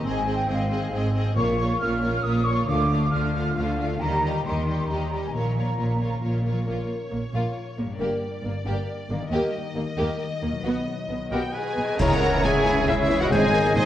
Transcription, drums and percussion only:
12.00 concert bass drum medium
12.00 snare medium
12.00 crash medium
12.12 snare medium
12.23 snare medium
12.44 concert bass drum medium
12.44 snare medium
12.66 snare medium
12.88 concert bass drum medium
13.10 snare medium
13.31 concert bass drum medium
13.31 snare medium
13.54 snare medium
13.65 snare medium
13.76 concert bass drum medium
13.76 snare medium

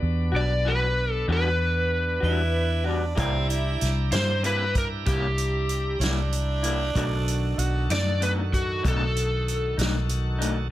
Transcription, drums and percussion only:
3.17 kick loud
3.17 closed hi-hat medium
3.50 closed hi-hat medium
3.81 snare soft
3.81 closed hi-hat soft
4.12 snare loud
4.12 closed hi-hat medium
4.44 closed hi-hat soft
4.75 kick medium
4.75 closed hi-hat medium
5.06 kick medium
5.06 closed hi-hat medium
5.38 closed hi-hat medium
5.69 closed hi-hat medium
6.01 snare medium
6.01 closed hi-hat medium
6.32 closed hi-hat medium
6.63 closed hi-hat medium
6.96 kick medium
6.96 closed hi-hat medium
7.28 closed hi-hat medium
7.59 closed hi-hat medium
7.90 snare loud
7.90 closed hi-hat medium
8.22 closed hi-hat medium
8.53 kick medium
8.53 closed hi-hat medium
8.85 kick medium
8.85 closed hi-hat medium
9.16 closed hi-hat medium
9.48 closed hi-hat soft
9.79 snare medium
9.79 closed hi-hat medium
10.09 closed hi-hat medium
10.41 closed hi-hat medium

